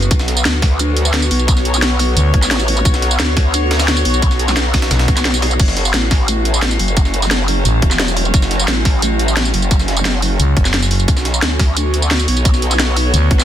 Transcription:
Already playing: B3
0.02 closed hi-hat, tambourine
0.11 B1 F#4 C#5, kick, closed hi-hat, tambourine
0.19 snare, tambourine
0.28 snare, closed hi-hat
0.37 tambourine
0.45 D2, snare, closed hi-hat, tambourine
0.62 kick, snare, closed hi-hat, open hi-hat, tambourine
0.79 closed hi-hat, tambourine
0.97 closed hi-hat
1.05 tambourine
1.14 snare, closed hi-hat
1.22 tambourine
1.31 B1, closed hi-hat, open hi-hat
1.39 closed hi-hat, tambourine
1.48 kick, closed hi-hat, tambourine
1.57 snare, tambourine
1.65 closed hi-hat
1.74 snare, closed hi-hat, tambourine
1.82 snare, closed hi-hat, tambourine
1.99 closed hi-hat, open hi-hat, tambourine
2.17 D2, closed hi-hat, tambourine
2.34 A1, kick, closed hi-hat
2.42 snare, tambourine
2.51 snare, closed hi-hat
2.59 snare, tambourine
2.68 closed hi-hat, open hi-hat
2.77 closed hi-hat, tambourine
2.85 B1, kick, closed hi-hat, tambourine
2.94 snare, tambourine
3.02 snare, closed hi-hat
3.11 tambourine
3.19 D2, snare, closed hi-hat, tambourine
3.37 kick, snare, closed hi-hat, open hi-hat, tambourine
3.54 closed hi-hat, tambourine
3.71 snare, closed hi-hat
3.79 snare, closed hi-hat, tambourine
3.88 snare, closed hi-hat
3.97 tambourine
4.05 B1, closed hi-hat, open hi-hat
4.14 closed hi-hat, tambourine
4.22 kick, closed hi-hat, tambourine
4.31 snare, tambourine
4.39 closed hi-hat
4.48 snare, tambourine
4.57 snare, closed hi-hat, tambourine
4.74 kick, snare, closed hi-hat, open hi-hat, tambourine
4.82 snare, closed hi-hat
4.91 B1, snare, closed hi-hat, tambourine
4.99 snare, closed hi-hat
5.08 B1, kick, snare, closed hi-hat, tambourine
5.17 snare, closed hi-hat, tambourine
5.25 snare, closed hi-hat
5.34 snare, closed hi-hat, tambourine
5.42 snare, closed hi-hat, open hi-hat
5.51 closed hi-hat, tambourine
5.59 F#1 F#3 C#4, kick, closed hi-hat, crash, tambourine
5.68 snare, tambourine
5.77 snare, closed hi-hat
5.85 tambourine
5.94 A1, snare, closed hi-hat, tambourine
6.11 kick, snare, closed hi-hat, open hi-hat, tambourine
6.28 closed hi-hat, tambourine
6.45 closed hi-hat
6.54 tambourine
6.62 snare, closed hi-hat
6.71 tambourine
6.79 F#1, closed hi-hat, open hi-hat
6.88 closed hi-hat, tambourine
6.97 kick, closed hi-hat, tambourine
7.05 snare, tambourine
7.14 closed hi-hat
7.22 snare, closed hi-hat, tambourine
7.31 snare, closed hi-hat, tambourine
7.48 closed hi-hat, open hi-hat, tambourine
7.65 A1, closed hi-hat, tambourine
7.82 E1, kick, closed hi-hat
7.91 snare, tambourine
7.99 snare, closed hi-hat
8.08 snare, tambourine
8.17 closed hi-hat, open hi-hat
8.25 closed hi-hat, tambourine
8.34 F#1, kick, closed hi-hat, tambourine
8.42 snare, tambourine
8.51 snare, closed hi-hat
8.60 tambourine
8.68 A1, snare, closed hi-hat, tambourine
8.85 kick, snare, closed hi-hat, open hi-hat, tambourine
9.02 closed hi-hat, tambourine
9.19 closed hi-hat
9.28 tambourine
9.37 snare, closed hi-hat
9.45 tambourine
9.54 F#1, closed hi-hat, open hi-hat
9.62 closed hi-hat, tambourine
9.71 kick, closed hi-hat, tambourine
9.79 snare, tambourine
9.88 snare, closed hi-hat
9.97 closed hi-hat, tambourine
10.05 snare, closed hi-hat, tambourine
10.22 closed hi-hat, open hi-hat, tambourine
10.39 C#2, closed hi-hat, tambourine
10.57 F#1, kick, closed hi-hat
10.65 snare, tambourine
10.74 snare, closed hi-hat
10.82 snare, tambourine
10.91 snare, closed hi-hat, open hi-hat
11.00 closed hi-hat, tambourine
11.08 B1 B3 F#4 C#5, kick, closed hi-hat, tambourine
11.17 snare, tambourine
11.25 snare, closed hi-hat
11.34 tambourine
11.42 D2, snare, closed hi-hat, tambourine
11.59 kick, snare, closed hi-hat, open hi-hat, tambourine
11.77 closed hi-hat, tambourine
11.94 closed hi-hat
12.02 tambourine
12.11 snare, closed hi-hat
12.20 tambourine
12.28 B1, closed hi-hat, open hi-hat
12.37 closed hi-hat, tambourine
12.45 kick, closed hi-hat, tambourine
12.54 snare, tambourine
12.62 closed hi-hat
12.71 snare, closed hi-hat, tambourine
12.79 snare, closed hi-hat, tambourine
12.96 closed hi-hat, open hi-hat, tambourine
13.14 D2, closed hi-hat, tambourine
13.31 A1, kick, closed hi-hat
13.39 snare, tambourine

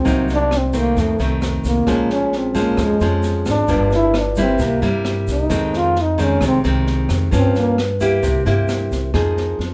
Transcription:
Already playing: C4
0.05 C2 C3 F#3 A#3 D#4, kick, snare, shaker
0.28 snare, shaker
0.33 D4
0.51 cross-stick, snare
0.57 C4
0.73 D#3 A3 C4, kick, snare, shaker
0.78 A#3
0.97 F2, kick, snare, shaker
1.01 A3
1.19 C2 D#3 A3 C4, snare, shaker
1.42 cross-stick, snare, shaker
1.64 C2 A#3, kick, snare, shaker
1.87 A#1 A#2 F3 G#3 C#4, kick, cross-stick, snare, shaker
2.10 C#4, snare, shaker
2.32 snare
2.38 C4
2.55 F3 G#3 C#4, kick, snare, shaker
2.60 A#3
2.77 F2, kick, cross-stick, snare, shaker
2.85 G#3
3.00 F2 F3 G#3 C#4, snare, shaker
3.23 snare, shaker
3.45 G#1, kick, cross-stick, snare, shaker
3.50 D4
3.68 G1 G2 F3 A#3 D4, kick, snare, shaker
3.91 snare, shaker
3.95 E4
4.14 cross-stick, snare
4.20 D4
4.36 G3 A#3 E4, kick, snare, shaker
4.42 C4
4.59 C2 C3, kick, snare, shaker
4.65 A#3
4.82 G2 G3 A#3 E4, snare, shaker
5.05 cross-stick, snare
5.28 C2, kick, snare, shaker
5.32 D#4
5.50 F2 D#3 G#3 C4, kick, cross-stick, snare, shaker
5.73 F4, snare, shaker
5.96 snare
6.01 D#4
6.18 D#3 G#3 C4, kick, snare, shaker
6.22 C#4
6.41 C2 C3, kick, cross-stick, snare, shaker
6.47 C4
6.64 C2 D#3 G#3 C4, snare, shaker
6.87 snare
7.09 F2, kick, cross-stick, snare, shaker
7.31 G2 F3 A#3 C#4, kick, snare, shaker
7.37 C4
7.55 snare, shaker
7.59 A#3
7.78 cross-stick, snare
8.00 A#3 E4 G4, kick, snare, shaker
8.23 C2 C3, kick, snare, shaker
8.46 G2 A#3 E4 G4, snare, shaker
8.68 cross-stick, snare, shaker
8.91 C2, kick, snare, shaker
9.14 F2 F3 A#3 D#4 G#4, kick, cross-stick, snare
9.37 snare
9.59 F2, snare

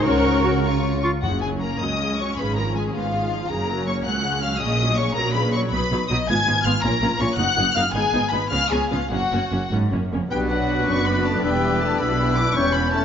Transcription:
0.04 C#2 C#3 C#4 F#4 A#4 C#5 C#6
0.44 F#4 C#6
0.64 F4 C#5 C#6
1.03 F4 C#6
1.23 F#1 F#2 C#3 C#4 F#4 F#5
1.42 F#3 G#4 G#5
1.61 A#3 A#4 A#5
1.80 C#2 F#3 D#5 D#6
2.00 C#3
2.19 F#3 C#5 C#6
2.38 G#1 G#2 C#3 B4 B5
2.57 F3 A#4 A#5
2.76 G#3 G#4 G#5
2.95 G#1 G#2 B3 F4 F5
3.14 G#3
3.32 F3
3.49 F#1 F#2 C#3 C#4 A#4 A#5
3.69 F#3
3.87 A#3 C#5 C#6
4.06 C#2 F#3 F#5 F#6
4.24 C#3
4.42 F#3 F5 F6
4.60 A#1 A#2 C#3 D#5 D#6
4.80 F#3
4.97 C#3 C#5 C#6
5.16 A#1 A#2 F#3 A#4 A#5
5.34 C#3 B4 B5
5.53 F#3 C#5 C#6
5.72 B1 B2 F#3 D#4 B4 B5
5.91 B1 B2 F#3 D#4
6.09 B1 B2 F#3 D#4 D#5 D#6
6.28 G#1 G#2 B3 F4 G#5 G#6
6.46 G#1 G#2 B3 F4
6.64 G#1 G#2 B3 F4 F5 F6
6.82 A#1 A#2 C#4 F4 A#4 A#5
7.01 A#1 A#2 C#4 F4
7.19 A#1 A#2 C#4 F4 C#5 C#6
7.37 F#1 F#2 A#3 D#4 F#5 F#6
7.56 F#1 F#2 A#3 D#4
7.74 F#1 F#2 A#3 D#4 F5 F6
7.93 G#1 G#2 B3 D#4 G#4 G#5
8.13 G#1 G#2 B3 D#4
8.31 G#1 G#2 B3 D#4 B4 B5
8.51 C#2 C#3 B3 C#4 F5 F6
8.70 C#2 C#3 B3 C#4 G#4 G#5
8.91 C#2 C#3 B3 C#4 F4 F5
9.11 F#1 F#2 A#3 C#4 F#4 F#5
9.31 F#1 F#2 A#3 C#4
9.51 F#1 F#2 A#3 C#4
9.71 F#1 G#2 A#3 C#4
9.92 F#1 F#2 A#3 C#4
10.12 F#1 F2 A#3 C#4
10.31 B1 B2 G3 B3 D4 F#4 B4 D5 G5 F#6
10.50 F#3 D4 F#5
10.70 F#4
10.88 F#1 F#2 C#4 B4 C#6
11.06 B3 F#4 B5
11.25 A3 D4 A5
11.43 E1 E2 G3 D4 E4 B4 G5 E6
11.63 E4
11.81 A3 G4 A5
11.99 B1 B2 B3 D4 B4 B5 E6
12.20 G4
12.37 D4 E4 D6
12.55 E1 E2 G3 C#4 C#5 C#6 G6
12.74 B3 C#4 B5
12.93 A3 E4 A5

